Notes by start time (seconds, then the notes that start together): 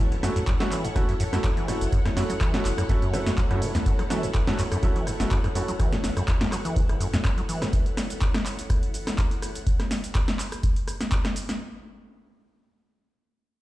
Already playing: E4 A4 C#5 F#5
0.12 F#1, closed hi-hat
0.23 F#2 A3 C#4 E4 F#4, cross-stick, snare, open hi-hat, shaker
0.36 F#2, closed hi-hat, shaker
0.47 F#2, kick, clap, closed hi-hat, shaker
0.60 F#3 A3 C#4 E4 F#4, cross-stick, snare, closed hi-hat
0.71 E3, clap, open hi-hat, shaker
0.85 F#2, closed hi-hat, shaker
0.96 F#1 A3 C#4 E4 F#4, kick, cross-stick, closed hi-hat, shaker
1.09 F#2, closed hi-hat
1.20 F#2, open hi-hat, shaker
1.33 F#2 A3 C#4 E4 F#4, cross-stick, snare, closed hi-hat, shaker
1.44 F#3, kick, clap, closed hi-hat, shaker
1.57 E3, closed hi-hat
1.68 F#2 A3 C#4 E4 F#4, cross-stick, open hi-hat, shaker
1.81 F#1, closed hi-hat, shaker
1.92 F#2, kick, closed hi-hat, shaker
2.05 F#2, cross-stick, snare, closed hi-hat
2.17 F#2 A3 C#4 E4 F#4, snare, open hi-hat, shaker
2.30 F#3, closed hi-hat, shaker
2.41 E3, kick, cross-stick, clap, closed hi-hat, shaker
2.54 F#2 A3 C#4 E4 F#4, snare, closed hi-hat
2.65 F#1, clap, open hi-hat, shaker
2.78 F#2, cross-stick, closed hi-hat, shaker
2.89 F#2 A3 C#4 E4 F#4, kick, closed hi-hat, shaker
3.02 F#2, closed hi-hat
3.13 F#3 A3 C#4 E4 F#4, cross-stick, open hi-hat, shaker
3.26 F#2, snare, closed hi-hat, shaker
3.38 F#3, kick, clap, closed hi-hat, shaker
3.51 F#2 A3 C#4 E4 F#4, cross-stick, closed hi-hat
3.62 B2, open hi-hat, shaker
3.75 E2, snare, closed hi-hat, shaker
3.86 F#2, kick, closed hi-hat, shaker
3.99 F#3, cross-stick, closed hi-hat
4.10 E3 A3 C#4 E4 F#4, snare, open hi-hat, shaker
4.23 F#2, closed hi-hat, shaker
4.34 F#1, kick, cross-stick, clap, closed hi-hat, shaker
4.47 F#2 A3 C#4 E4 F#4, snare, closed hi-hat
4.59 F#2, clap, open hi-hat, shaker
4.72 F#2, cross-stick, closed hi-hat, shaker
4.83 F#3 A3 C#4 E4 F#4, kick, closed hi-hat, shaker
4.96 E3, closed hi-hat
5.07 F#2, cross-stick, open hi-hat, shaker
5.20 F#1 A3 C#4 E4 F#4, snare, closed hi-hat, shaker
5.31 F#2, kick, clap, closed hi-hat, shaker
5.44 F#2, cross-stick, closed hi-hat
5.55 F#2 A3 C#4 E4 F#4, open hi-hat, shaker
5.68 F#3, closed hi-hat, shaker
5.79 E3, kick, cross-stick, closed hi-hat, shaker
5.93 F#2, snare, closed hi-hat
6.04 F#1, snare, open hi-hat, shaker
6.17 F#2, cross-stick, closed hi-hat, shaker
6.28 F#2, kick, clap, closed hi-hat, shaker
6.41 F#2, snare, closed hi-hat
6.52 F#3, cross-stick, clap, open hi-hat, shaker
6.65 E3, closed hi-hat, shaker
6.76 F#2, kick, closed hi-hat, shaker
6.89 F#1, cross-stick, closed hi-hat
7.00 F#2, open hi-hat, shaker
7.13 F#2, snare, closed hi-hat, shaker
7.25 F#2, kick, cross-stick, clap, closed hi-hat, shaker
7.38 F#3, closed hi-hat
7.49 E3, open hi-hat, shaker
7.62 F#2, cross-stick, snare, closed hi-hat, shaker
7.73 kick, closed hi-hat, shaker
7.86 closed hi-hat
7.97 cross-stick, snare, open hi-hat, shaker
8.10 closed hi-hat, shaker
8.21 kick, clap, closed hi-hat, shaker
8.34 cross-stick, snare, closed hi-hat
8.46 clap, open hi-hat, shaker
8.59 closed hi-hat, shaker
8.70 kick, cross-stick, closed hi-hat, shaker
8.83 closed hi-hat
8.94 open hi-hat, shaker
9.07 cross-stick, snare, closed hi-hat, shaker
9.18 kick, clap, closed hi-hat, shaker
9.31 closed hi-hat
9.42 cross-stick, open hi-hat, shaker
9.55 closed hi-hat, shaker
9.67 kick, closed hi-hat, shaker
9.80 cross-stick, snare, closed hi-hat
9.91 snare, open hi-hat, shaker
10.04 closed hi-hat, shaker
10.15 kick, cross-stick, clap, closed hi-hat, shaker
10.28 snare, closed hi-hat
10.39 clap, open hi-hat, shaker
10.52 cross-stick, closed hi-hat, shaker
10.63 kick, closed hi-hat, shaker
10.76 closed hi-hat
10.88 cross-stick, open hi-hat, shaker
11.01 snare, closed hi-hat, shaker
11.12 kick, clap, closed hi-hat, shaker
11.25 cross-stick, snare, closed hi-hat
11.36 open hi-hat, shaker
11.49 snare, closed hi-hat, shaker